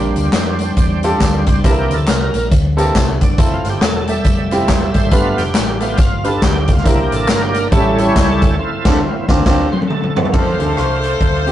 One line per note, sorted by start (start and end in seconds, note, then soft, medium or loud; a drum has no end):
0.00 0.12 A#1 loud
0.00 0.56 A#2 medium
0.00 1.61 G3 soft
0.00 1.61 C4 soft
0.00 0.36 D4 medium
0.00 1.46 D4 medium
0.00 0.36 F4 medium
0.00 0.36 G4 medium
0.00 0.36 A#4 medium
0.16 0.31 D2 medium
0.16 closed hi-hat medium
0.16 tambourine soft
0.32 0.70 F2 medium
0.32 snare loud
0.32 clap medium
0.32 closed hi-hat medium
0.32 tambourine medium
0.59 closed hi-hat medium
0.59 tambourine medium
0.77 1.14 E2 medium
0.77 kick loud
0.77 closed hi-hat medium
0.77 tambourine medium
1.03 1.08 C4 medium
1.03 1.36 F4 medium
1.03 1.36 G4 medium
1.03 1.36 A4 medium
1.03 closed hi-hat medium
1.03 tambourine medium
1.09 1.39 D4 medium
1.20 1.43 D2 medium
1.20 kick medium
1.20 snare medium
1.20 clap medium
1.20 closed hi-hat medium
1.20 tambourine medium
1.46 1.62 C#2 medium
1.46 1.63 D4 medium
1.46 kick medium
1.46 closed hi-hat medium
1.46 tambourine soft
1.64 1.86 C2 medium
1.64 2.30 C3 medium
1.64 1.95 E3 medium
1.64 1.96 A#3 soft
1.64 2.11 C4 medium
1.64 1.96 D4 medium
1.64 2.11 E4 medium
1.64 1.78 E4 medium
1.64 2.11 G4 medium
1.64 1.71 A4 medium
1.64 kick loud
1.64 closed hi-hat loud
1.64 tambourine medium
1.70 2.13 A#4 medium
1.79 1.92 G4 medium
1.90 2.05 D2 medium
1.90 1.95 A#4 medium
1.90 closed hi-hat medium
1.90 tambourine medium
1.94 2.09 A4 medium
2.07 2.30 C2 medium
2.07 2.49 A#4 medium
2.07 snare loud
2.07 clap medium
2.07 closed hi-hat medium
2.07 tambourine medium
2.34 2.49 A#1 medium
2.34 closed hi-hat medium
2.34 tambourine medium
2.51 2.88 D2 loud
2.51 kick loud
2.51 closed hi-hat medium
2.51 tambourine medium
2.77 2.93 E3 soft
2.77 2.93 A#3 soft
2.77 3.09 C4 medium
2.77 2.93 D4 medium
2.77 3.09 E4 medium
2.77 3.10 G4 medium
2.77 3.10 A4 medium
2.77 closed hi-hat medium
2.77 tambourine medium
2.95 3.17 C2 medium
2.95 kick medium
2.95 snare loud
2.95 clap medium
2.95 closed hi-hat medium
2.95 tambourine medium
3.21 3.36 F#1 medium
3.21 3.40 D4 medium
3.21 kick medium
3.21 closed hi-hat medium
3.21 tambourine soft
3.38 3.61 F1 loud
3.38 3.85 C4 medium
3.38 3.85 E4 medium
3.38 3.54 E4 medium
3.38 3.84 F4 medium
3.38 3.85 A4 medium
3.38 kick loud
3.38 closed hi-hat loud
3.38 tambourine medium
3.54 3.68 F4 medium
3.64 3.79 G1 medium
3.64 snare soft
3.64 closed hi-hat medium
3.64 tambourine soft
3.70 3.84 G4 medium
3.81 4.18 E1 medium
3.81 4.24 A4 medium
3.81 snare loud
3.81 clap medium
3.81 closed hi-hat medium
3.81 tambourine medium
4.07 5.09 G3 medium
4.07 5.09 A3 soft
4.07 5.09 E5 medium
4.07 closed hi-hat medium
4.07 tambourine medium
4.24 4.62 F1 medium
4.24 kick loud
4.24 closed hi-hat medium
4.24 tambourine medium
4.51 4.84 C4 medium
4.51 4.84 E4 medium
4.51 4.84 F4 medium
4.51 4.84 G4 medium
4.51 closed hi-hat medium
4.51 tambourine medium
4.68 4.91 E1 medium
4.68 kick medium
4.68 snare loud
4.68 clap medium
4.68 closed hi-hat medium
4.68 tambourine medium
4.94 5.09 G#1 loud
4.94 5.14 C5 medium
4.94 kick medium
4.94 closed hi-hat medium
4.94 tambourine soft
5.11 5.34 G1 loud
5.11 5.78 G2 medium
5.11 5.43 A3 medium
5.11 5.44 B3 soft
5.11 5.58 D4 medium
5.11 5.58 F4 medium
5.11 5.44 F4 medium
5.11 5.58 G4 medium
5.11 5.24 B4 medium
5.11 5.58 B4 medium
5.11 kick loud
5.11 closed hi-hat loud
5.11 tambourine medium
5.37 5.53 F1 medium
5.37 5.81 G4 medium
5.37 snare soft
5.37 closed hi-hat medium
5.37 tambourine soft
5.54 5.92 A1 medium
5.54 snare loud
5.54 clap medium
5.54 closed hi-hat medium
5.54 tambourine medium
5.80 5.97 A3 soft
5.80 5.97 B3 soft
5.80 5.97 F4 medium
5.80 6.00 G4 medium
5.80 closed hi-hat medium
5.80 tambourine medium
5.97 6.35 G1 medium
5.97 6.29 F4 medium
5.97 kick loud
5.97 closed hi-hat medium
5.97 tambourine medium
6.24 6.57 D4 medium
6.24 6.57 F4 medium
6.24 6.57 G4 medium
6.24 6.43 A4 medium
6.24 6.57 B4 medium
6.24 closed hi-hat medium
6.24 tambourine medium
6.42 6.64 D2 loud
6.42 6.73 G4 loud
6.42 kick medium
6.42 snare loud
6.42 clap medium
6.42 closed hi-hat medium
6.42 tambourine medium
6.67 6.83 C#2 loud
6.67 kick medium
6.67 closed hi-hat medium
6.67 tambourine soft
6.73 6.87 F4 medium
6.77 snare soft
6.84 7.08 C2 loud
6.84 7.51 C3 medium
6.84 7.68 A#3 medium
6.84 7.32 C4 medium
6.84 7.68 D4 soft
6.84 6.99 E4 medium
6.84 7.32 E4 medium
6.84 7.32 G4 medium
6.84 7.32 A#4 medium
6.84 kick loud
6.84 closed hi-hat loud
6.84 tambourine medium
7.00 7.15 G4 medium
7.11 7.26 A1 medium
7.11 7.29 A4 medium
7.11 closed hi-hat medium
7.11 tambourine soft
7.27 7.66 G1 medium
7.27 7.42 A#4 loud
7.27 snare loud
7.27 clap medium
7.27 closed hi-hat medium
7.27 tambourine medium
7.42 7.58 G4 medium
7.54 7.65 A#4 medium
7.54 closed hi-hat medium
7.54 tambourine medium
7.71 8.09 A1 loud
7.71 8.38 A2 medium
7.71 8.55 G3 medium
7.71 8.55 C#4 medium
7.71 7.93 C#4 medium
7.71 8.55 E4 medium
7.71 7.94 E4 medium
7.71 7.94 G4 medium
7.71 8.00 A4 loud
7.71 7.94 A4 medium
7.71 kick loud
7.71 closed hi-hat medium
7.71 tambourine medium
7.98 8.31 C#4 medium
7.98 8.31 E4 medium
7.98 8.31 G4 medium
7.98 8.31 A4 medium
7.98 8.14 C#5 loud
7.98 closed hi-hat medium
7.98 tambourine medium
8.15 8.38 C#2 medium
8.15 8.31 C#5 loud
8.15 kick medium
8.15 snare medium
8.15 clap medium
8.15 closed hi-hat medium
8.15 tambourine medium
8.31 8.94 A4 loud
8.42 8.57 D2 medium
8.42 kick medium
8.42 closed hi-hat medium
8.42 tambourine soft
8.59 9.25 F3 medium
8.59 9.26 C4 soft
8.59 9.26 E4 medium
8.85 8.97 D2 loud
8.85 8.98 D3 loud
8.85 8.98 C4 loud
8.85 8.97 D4 medium
8.85 8.98 F4 medium
8.85 8.98 A4 medium
8.85 kick loud
8.85 snare loud
8.85 crash loud
9.28 9.41 D2 loud
9.28 9.41 C4 loud
9.28 9.41 D4 loud
9.28 9.41 F4 loud
9.28 kick loud
9.28 snare loud
9.46 9.64 D2 loud
9.46 9.64 C4 loud
9.46 9.64 D4 loud
9.46 9.64 F4 loud
9.46 kick loud
9.46 snare loud
9.46 crash medium
9.72 9.80 C5 loud
9.72 high tom medium
9.82 high tom medium
9.88 10.29 A4 medium
9.88 mid tom medium
10.03 mid tom medium
10.16 floor tom loud
10.25 floor tom medium
10.32 10.56 F2 medium
10.32 11.52 D3 soft
10.32 11.52 F3 soft
10.32 11.52 A3 soft
10.32 11.52 C4 medium
10.32 10.47 C4 medium
10.32 10.47 D4 medium
10.32 11.52 F4 medium
10.32 10.47 F4 medium
10.32 11.52 A4 medium
10.32 10.48 A4 medium
10.32 11.52 C5 medium
10.32 kick loud
10.32 crash medium
10.59 10.74 D2 medium
10.59 11.05 C4 medium
10.59 11.05 D4 medium
10.59 11.05 F4 medium
10.59 10.64 G#4 soft
10.59 closed hi-hat medium
10.65 11.08 A4 medium
10.77 11.14 C2 medium
10.77 cross-stick medium
10.77 closed hi-hat medium
11.03 closed hi-hat medium
11.20 11.52 D2 medium
11.20 kick medium
11.20 closed hi-hat medium
11.46 11.52 C4 medium
11.46 11.52 D4 medium
11.46 11.52 F4 medium
11.46 11.52 G4 medium
11.46 closed hi-hat medium